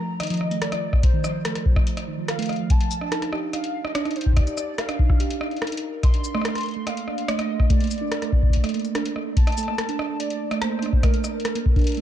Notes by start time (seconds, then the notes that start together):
Already playing: A#5
0.20 D#3 D#5, cross-stick, closed hi-hat
0.23 closed hi-hat
0.27 F3, closed hi-hat
0.30 closed hi-hat
0.34 closed hi-hat
0.37 cross-stick, closed hi-hat
0.51 A3, closed hi-hat
0.61 D5, cross-stick, closed hi-hat
0.72 F3, cross-stick, closed hi-hat
0.93 kick, cross-stick
1.03 C5, kick, closed hi-hat
1.14 D#3
1.24 F3, cross-stick, cabasa
1.45 A3, cross-stick, closed hi-hat
1.55 cross-stick, closed hi-hat
1.66 F3, kick
1.76 kick, cross-stick
1.87 closed hi-hat
1.97 cross-stick, closed hi-hat
2.07 D#3
2.18 F3
2.28 F5, cross-stick, closed hi-hat
2.39 A3, closed hi-hat
2.42 closed hi-hat
2.46 cross-stick, closed hi-hat
2.49 closed hi-hat
2.53 closed hi-hat
2.56 F3, closed hi-hat
2.70 A5, kick, closed hi-hat
2.81 closed hi-hat
2.91 cabasa
3.01 D4, cross-stick
3.12 D#4, cross-stick, closed hi-hat
3.22 cross-stick, closed hi-hat
3.33 G4, cross-stick
3.53 D#4 F5, cross-stick, closed hi-hat
3.64 closed hi-hat
3.85 D#5, cross-stick
3.95 D4, cross-stick, closed hi-hat
4.05 D#4, cross-stick, closed hi-hat
4.11 closed hi-hat
4.16 C5, closed hi-hat
4.21 closed hi-hat
4.26 G4, kick
4.33 D5, kick, cross-stick, closed hi-hat
4.37 kick
4.40 kick
4.47 D#4, closed hi-hat
4.57 cross-stick, cabasa
4.78 F5, cross-stick, closed hi-hat
4.89 D4, cross-stick, closed hi-hat
4.99 D#4, kick
5.10 kick, cross-stick
5.20 G4, closed hi-hat
5.30 closed hi-hat
5.41 D#4, cross-stick
5.51 closed hi-hat
5.56 closed hi-hat
5.62 cross-stick, closed hi-hat
5.67 closed hi-hat
5.72 D#4, closed hi-hat
5.77 closed hi-hat
5.82 A#4
5.93 A#4
6.03 C6, kick, cross-stick, closed hi-hat
6.14 D4, closed hi-hat
6.24 cabasa
6.35 A3, cross-stick
6.41 cross-stick
6.45 cross-stick, closed hi-hat
6.48 cross-stick
6.55 cross-stick, closed hi-hat
6.58 closed hi-hat
6.61 closed hi-hat
6.63 closed hi-hat
6.68 closed hi-hat
6.71 closed hi-hat
6.74 A3, closed hi-hat
6.87 A#3 F5, cross-stick, closed hi-hat
6.97 closed hi-hat
7.07 D4, cross-stick
7.18 closed hi-hat
7.28 A3 D#5, cross-stick, closed hi-hat
7.39 cross-stick, closed hi-hat
7.60 kick, cross-stick
7.70 A3 D5, kick, closed hi-hat
7.80 A#3, closed hi-hat
7.84 closed hi-hat
7.87 closed hi-hat
7.91 closed hi-hat, cabasa
7.94 closed hi-hat
7.98 D4, closed hi-hat
8.12 cross-stick, closed hi-hat
8.22 A3, cross-stick, closed hi-hat
8.33 kick
8.43 kick
8.50 kick, closed hi-hat
8.57 kick
8.64 A3, cross-stick, closed hi-hat
8.69 closed hi-hat
8.74 A#3, closed hi-hat
8.79 closed hi-hat
8.85 closed hi-hat
8.95 D4, cross-stick, closed hi-hat
9.05 closed hi-hat
9.16 A3, cross-stick
9.37 A5, kick, closed hi-hat
9.47 cross-stick, closed hi-hat
9.52 closed hi-hat
9.57 A3, closed hi-hat, cabasa
9.63 closed hi-hat
9.68 A#3, cross-stick
9.78 cross-stick, closed hi-hat
9.89 D4, closed hi-hat
9.99 cross-stick
10.10 A3
10.20 D5, closed hi-hat
10.30 closed hi-hat
10.51 A3, cross-stick, closed hi-hat
10.62 A#3 C5, cross-stick, closed hi-hat
10.72 cross-stick
10.79 D4, cross-stick, closed hi-hat
10.86 cross-stick
10.93 kick
11.03 A3 A#4, kick, cross-stick, closed hi-hat
11.14 closed hi-hat
11.24 cross-stick, cabasa
11.40 closed hi-hat
11.45 A3, cross-stick, closed hi-hat
11.55 A#3, closed hi-hat
11.66 kick
11.76 D4, kick, closed hi-hat
11.79 closed hi-hat
11.81 closed hi-hat
11.84 closed hi-hat
11.87 closed hi-hat
11.89 closed hi-hat
11.92 closed hi-hat
11.95 closed hi-hat
11.97 A3, closed hi-hat